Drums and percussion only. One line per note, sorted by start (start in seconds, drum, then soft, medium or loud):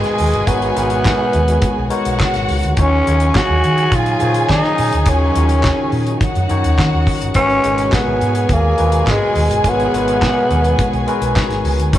0.04 snare soft
0.04 closed hi-hat soft
0.18 open hi-hat medium
0.34 closed hi-hat soft
0.47 kick loud
0.47 closed hi-hat medium
0.62 closed hi-hat soft
0.77 closed hi-hat medium
0.90 closed hi-hat soft
1.05 kick loud
1.05 snare loud
1.05 clap medium
1.33 closed hi-hat soft
1.48 closed hi-hat soft
1.62 kick loud
1.62 closed hi-hat medium
1.90 closed hi-hat soft
2.05 closed hi-hat soft
2.20 kick medium
2.20 snare medium
2.20 clap medium
2.34 snare soft
2.34 closed hi-hat soft
2.49 open hi-hat medium
2.63 closed hi-hat soft
2.77 kick loud
2.77 closed hi-hat medium
3.07 closed hi-hat medium
3.20 closed hi-hat soft
3.35 kick loud
3.35 snare loud
3.35 clap medium
3.64 closed hi-hat soft
3.78 closed hi-hat soft
3.92 kick loud
3.92 closed hi-hat medium
4.06 closed hi-hat soft
4.20 closed hi-hat soft
4.34 closed hi-hat soft
4.49 kick medium
4.49 snare loud
4.49 clap medium
4.64 snare soft
4.78 open hi-hat medium
4.92 closed hi-hat medium
5.06 kick loud
5.06 closed hi-hat medium
5.35 closed hi-hat medium
5.49 closed hi-hat soft
5.63 kick loud
5.63 snare loud
5.63 clap medium
5.92 open hi-hat soft
6.06 closed hi-hat soft
6.21 kick loud
6.21 closed hi-hat medium
6.35 closed hi-hat soft
6.49 closed hi-hat soft
6.64 closed hi-hat soft
6.78 kick medium
6.78 snare medium
6.78 clap medium
7.07 kick medium
7.07 open hi-hat medium
7.22 closed hi-hat soft
7.34 kick loud
7.34 closed hi-hat medium
7.50 closed hi-hat soft
7.64 closed hi-hat medium
7.78 closed hi-hat soft
7.92 kick loud
7.92 snare loud
7.92 clap medium
8.21 closed hi-hat soft
8.35 closed hi-hat soft
8.49 kick loud
8.49 closed hi-hat medium
8.78 closed hi-hat soft
8.92 closed hi-hat medium
9.07 kick medium
9.07 snare medium
9.07 clap medium
9.35 open hi-hat medium
9.51 closed hi-hat soft
9.64 kick loud
9.64 closed hi-hat medium
9.80 closed hi-hat soft
9.94 closed hi-hat medium
10.08 closed hi-hat soft
10.22 kick loud
10.22 snare loud
10.22 clap medium
10.51 closed hi-hat soft
10.64 closed hi-hat soft
10.79 kick loud
10.79 closed hi-hat medium
10.93 closed hi-hat soft
11.08 closed hi-hat soft
11.22 closed hi-hat soft
11.36 kick medium
11.36 snare medium
11.36 clap medium
11.50 snare soft
11.50 closed hi-hat soft
11.65 open hi-hat medium
11.80 closed hi-hat soft
11.93 kick loud
11.93 closed hi-hat medium